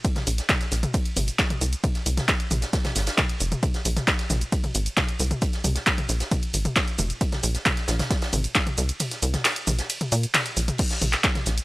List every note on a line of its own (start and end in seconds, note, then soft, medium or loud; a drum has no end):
0.04 kick loud
0.04 closed hi-hat medium
0.04 closed hi-hat loud
0.04 ride medium
0.04 shaker soft
0.16 snare medium
0.16 closed hi-hat medium
0.16 mid tom medium
0.16 shaker soft
0.27 0.41 A#1 loud
0.27 closed hi-hat medium
0.27 open hi-hat loud
0.27 shaker medium
0.38 snare soft
0.38 closed hi-hat medium
0.38 shaker soft
0.49 kick loud
0.49 snare loud
0.49 clap loud
0.49 closed hi-hat medium
0.49 closed hi-hat loud
0.49 mid tom medium
0.49 ride medium
0.49 shaker soft
0.61 snare soft
0.61 closed hi-hat medium
0.61 shaker soft
0.72 0.86 A#1 loud
0.72 snare soft
0.72 closed hi-hat medium
0.72 open hi-hat loud
0.72 shaker medium
0.83 closed hi-hat medium
0.83 mid tom medium
0.83 shaker soft
0.94 kick loud
0.94 closed hi-hat loud
0.94 ride medium
0.94 shaker soft
1.05 closed hi-hat soft
1.05 closed hi-hat medium
1.05 shaker soft
1.16 1.30 G#1 loud
1.16 closed hi-hat medium
1.16 open hi-hat loud
1.16 mid tom medium
1.16 shaker medium
1.27 closed hi-hat soft
1.27 closed hi-hat medium
1.27 shaker soft
1.39 kick loud
1.39 snare loud
1.39 clap loud
1.39 closed hi-hat medium
1.39 closed hi-hat loud
1.39 ride medium
1.39 shaker soft
1.50 closed hi-hat medium
1.50 mid tom medium
1.50 shaker soft
1.61 1.75 C2 loud
1.61 closed hi-hat medium
1.61 open hi-hat loud
1.61 shaker medium
1.73 closed hi-hat medium
1.73 shaker soft
1.84 kick loud
1.84 closed hi-hat medium
1.84 mid tom medium
1.84 ride medium
1.84 shaker soft
1.95 snare soft
1.95 closed hi-hat medium
1.95 shaker soft
2.06 2.20 C2 loud
2.06 closed hi-hat medium
2.06 open hi-hat loud
2.06 shaker medium
2.17 snare medium
2.17 closed hi-hat soft
2.17 mid tom medium
2.17 shaker soft
2.28 kick loud
2.28 snare loud
2.28 clap loud
2.28 closed hi-hat medium
2.28 ride medium
2.28 shaker soft
2.40 closed hi-hat soft
2.40 shaker soft
2.51 2.65 A#1 loud
2.51 closed hi-hat medium
2.51 open hi-hat loud
2.51 mid tom medium
2.51 shaker medium
2.62 snare medium
2.62 closed hi-hat medium
2.62 shaker soft
2.73 kick loud
2.73 snare loud
2.73 closed hi-hat loud
2.73 closed hi-hat medium
2.73 ride medium
2.73 shaker soft
2.84 snare loud
2.84 closed hi-hat medium
2.84 mid tom medium
2.84 shaker soft
2.95 3.10 G#1 medium
2.95 snare medium
2.95 closed hi-hat medium
2.95 open hi-hat loud
2.95 shaker medium
3.06 snare loud
3.06 closed hi-hat medium
3.06 shaker soft
3.17 kick loud
3.17 snare loud
3.17 clap loud
3.17 closed hi-hat medium
3.17 mid tom medium
3.17 ride medium
3.17 shaker soft
3.29 closed hi-hat soft
3.29 shaker soft
3.40 3.54 F1 loud
3.40 closed hi-hat medium
3.40 open hi-hat loud
3.40 shaker medium
3.52 closed hi-hat medium
3.52 mid tom medium
3.52 shaker soft
3.62 kick loud
3.62 closed hi-hat medium
3.62 mid tom medium
3.62 ride medium
3.62 shaker soft
3.74 snare medium
3.74 closed hi-hat medium
3.74 shaker soft
3.85 3.99 A#1 loud
3.85 closed hi-hat medium
3.85 open hi-hat loud
3.85 shaker medium
3.96 snare soft
3.96 closed hi-hat medium
3.96 mid tom medium
3.96 shaker soft
4.07 kick loud
4.07 snare loud
4.07 clap loud
4.07 closed hi-hat medium
4.07 ride medium
4.07 shaker soft
4.19 snare soft
4.19 closed hi-hat soft
4.19 shaker soft
4.30 4.44 A#1 loud
4.30 snare soft
4.30 closed hi-hat medium
4.30 open hi-hat loud
4.30 mid tom medium
4.30 shaker medium
4.41 closed hi-hat medium
4.41 shaker soft
4.52 kick loud
4.52 closed hi-hat medium
4.52 closed hi-hat loud
4.52 ride medium
4.52 shaker soft
4.64 closed hi-hat medium
4.64 closed hi-hat soft
4.64 mid tom medium
4.64 shaker soft
4.75 4.89 G#1 loud
4.75 closed hi-hat medium
4.75 open hi-hat loud
4.75 shaker medium
4.86 closed hi-hat medium
4.86 closed hi-hat soft
4.86 shaker soft
4.97 kick loud
4.97 snare loud
4.97 clap loud
4.97 closed hi-hat medium
4.97 closed hi-hat loud
4.97 mid tom medium
4.97 ride medium
4.97 shaker soft
5.08 closed hi-hat soft
5.08 shaker soft
5.20 5.33 C2 medium
5.20 closed hi-hat medium
5.20 open hi-hat loud
5.20 shaker medium
5.31 closed hi-hat soft
5.31 mid tom medium
5.31 shaker soft
5.42 kick loud
5.42 closed hi-hat medium
5.42 ride medium
5.42 shaker soft
5.53 snare soft
5.53 closed hi-hat medium
5.53 shaker soft
5.64 5.78 C2 loud
5.64 closed hi-hat medium
5.64 open hi-hat loud
5.64 mid tom medium
5.64 shaker medium
5.75 snare medium
5.75 closed hi-hat medium
5.75 shaker soft
5.86 kick loud
5.86 snare loud
5.86 clap loud
5.86 closed hi-hat medium
5.86 closed hi-hat loud
5.86 ride medium
5.86 shaker soft
5.98 closed hi-hat soft
5.98 mid tom medium
5.98 shaker soft
6.09 6.23 A#1 medium
6.09 closed hi-hat medium
6.09 open hi-hat loud
6.09 shaker medium
6.20 snare medium
6.20 closed hi-hat medium
6.20 shaker soft
6.31 kick loud
6.31 closed hi-hat medium
6.31 mid tom medium
6.31 ride medium
6.31 shaker soft
6.43 closed hi-hat medium
6.43 shaker soft
6.54 6.68 G#1 medium
6.54 closed hi-hat medium
6.54 open hi-hat loud
6.54 shaker medium
6.65 closed hi-hat soft
6.65 closed hi-hat medium
6.65 mid tom medium
6.65 shaker soft
6.76 kick loud
6.76 snare loud
6.76 clap loud
6.76 closed hi-hat medium
6.76 ride medium
6.76 shaker soft
6.88 closed hi-hat soft
6.88 shaker soft
6.99 7.12 F1 medium
6.99 closed hi-hat medium
6.99 open hi-hat loud
6.99 mid tom medium
6.99 shaker medium
7.10 closed hi-hat medium
7.10 shaker soft
7.21 kick loud
7.21 closed hi-hat medium
7.21 ride medium
7.21 shaker soft
7.32 snare medium
7.32 closed hi-hat medium
7.32 mid tom medium
7.32 shaker soft
7.43 7.57 A#1 loud
7.43 closed hi-hat medium
7.43 open hi-hat loud
7.43 shaker medium
7.54 snare soft
7.54 closed hi-hat medium
7.54 shaker soft
7.65 kick loud
7.65 snare loud
7.65 clap loud
7.65 closed hi-hat loud
7.65 closed hi-hat medium
7.65 mid tom medium
7.65 ride medium
7.65 shaker soft
7.77 snare soft
7.77 closed hi-hat soft
7.77 shaker soft
7.88 8.02 A#1 loud
7.88 snare loud
7.88 closed hi-hat medium
7.88 open hi-hat loud
7.88 shaker medium
7.99 snare loud
7.99 closed hi-hat medium
7.99 mid tom medium
7.99 shaker soft
8.11 kick loud
8.11 snare loud
8.11 closed hi-hat loud
8.11 closed hi-hat medium
8.11 ride medium
8.11 shaker soft
8.22 snare loud
8.22 closed hi-hat medium
8.22 shaker soft
8.33 8.47 G#1 loud
8.33 closed hi-hat medium
8.33 open hi-hat loud
8.33 mid tom medium
8.33 shaker medium
8.44 closed hi-hat medium
8.44 closed hi-hat soft
8.44 shaker soft
8.55 kick loud
8.55 snare loud
8.55 clap loud
8.55 closed hi-hat medium
8.55 ride medium
8.55 shaker soft
8.67 closed hi-hat medium
8.67 mid tom medium
8.67 shaker soft
8.78 8.92 C2 loud
8.78 closed hi-hat medium
8.78 open hi-hat loud
8.78 shaker medium
8.89 closed hi-hat medium
8.89 shaker soft
8.99 closed hi-hat medium
8.99 mid tom medium
8.99 ride medium
8.99 shaker soft
9.11 snare soft
9.11 closed hi-hat medium
9.11 shaker soft
9.22 9.36 C2 loud
9.22 closed hi-hat medium
9.22 open hi-hat loud
9.22 shaker medium
9.34 snare medium
9.34 closed hi-hat medium
9.34 mid tom medium
9.34 shaker soft
9.45 snare loud
9.45 clap loud
9.45 closed hi-hat loud
9.45 ride medium
9.45 shaker soft
9.56 closed hi-hat medium
9.56 shaker soft
9.67 9.81 A#1 medium
9.67 closed hi-hat medium
9.67 open hi-hat loud
9.67 mid tom medium
9.67 shaker medium
9.79 snare medium
9.79 closed hi-hat medium
9.79 shaker soft
9.90 closed hi-hat loud
9.90 closed hi-hat medium
9.90 ride medium
9.90 shaker soft
10.01 closed hi-hat medium
10.01 mid tom medium
10.01 shaker soft
10.12 10.26 A#2 medium
10.12 closed hi-hat medium
10.12 open hi-hat loud
10.12 shaker medium
10.23 closed hi-hat soft
10.23 closed hi-hat medium
10.23 shaker soft
10.34 snare loud
10.34 clap loud
10.34 closed hi-hat medium
10.34 mid tom medium
10.34 ride medium
10.34 shaker soft
10.46 closed hi-hat medium
10.46 shaker soft
10.57 10.71 A#1 medium
10.57 closed hi-hat medium
10.57 open hi-hat loud
10.57 shaker medium
10.68 closed hi-hat medium
10.68 mid tom medium
10.68 shaker soft
10.78 kick loud
10.78 closed hi-hat medium
10.78 closed hi-hat loud
10.78 crash loud
10.78 ride medium
10.78 shaker soft
10.90 snare medium
10.90 closed hi-hat medium
10.90 shaker soft
11.01 11.15 A#1 loud
11.01 closed hi-hat medium
11.01 open hi-hat loud
11.01 mid tom medium
11.01 shaker medium
11.13 snare soft
11.13 clap medium
11.13 closed hi-hat medium
11.13 shaker soft
11.24 kick loud
11.24 snare loud
11.24 clap loud
11.24 closed hi-hat medium
11.24 closed hi-hat loud
11.24 ride medium
11.24 shaker soft
11.35 snare soft
11.35 closed hi-hat medium
11.35 mid tom medium
11.35 shaker soft
11.46 11.60 A#1 loud
11.46 snare medium
11.46 closed hi-hat medium
11.46 open hi-hat loud
11.46 shaker medium
11.58 closed hi-hat medium
11.58 shaker soft